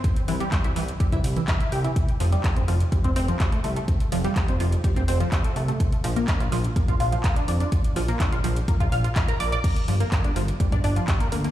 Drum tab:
CC |----------------|----------------|----------------|----------------|
HH |xxoxxxoxxxoxxxox|xxoxxxoxxxoxxxox|xxoxxxoxxxoxxxox|xxoxxxoxxxoxxxox|
CP |----x-------x---|----x-------x---|----x-------x---|----x-------x---|
BD |o---o---oo--o---|o---o---oo--o---|o---o---oo--o---|o---o---oo--o---|

CC |----------------|x---------------|
HH |xxoxxxoxxxoxxxox|xxoxxxoxxxoxxxox|
CP |----x-------x---|----x-------x---|
BD |o---o---oo--o---|o---o---oo--o---|